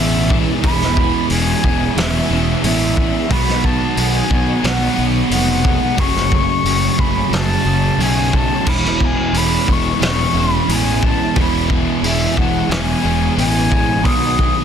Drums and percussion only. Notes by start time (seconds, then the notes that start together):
0.30 kick
0.64 kick, open hi-hat
0.82 snare
0.97 kick
1.30 open hi-hat
1.64 kick
1.97 snare, open hi-hat
2.64 open hi-hat
2.97 kick
3.30 kick, open hi-hat
3.48 snare
3.64 kick
3.97 open hi-hat
4.31 kick
4.64 snare, open hi-hat
5.31 open hi-hat
5.65 kick
5.98 kick, open hi-hat
6.16 snare
6.32 kick
6.65 open hi-hat
6.99 kick
7.33 snare, open hi-hat
8.00 open hi-hat
8.33 kick
8.67 kick, crash
8.85 snare
9.00 kick
9.34 open hi-hat
9.68 kick
10.02 snare, open hi-hat
10.69 open hi-hat
11.03 kick
11.36 kick, open hi-hat
11.70 kick
12.04 open hi-hat
12.37 kick
12.71 snare, open hi-hat
13.38 open hi-hat
13.72 kick
14.05 kick, open hi-hat
14.39 kick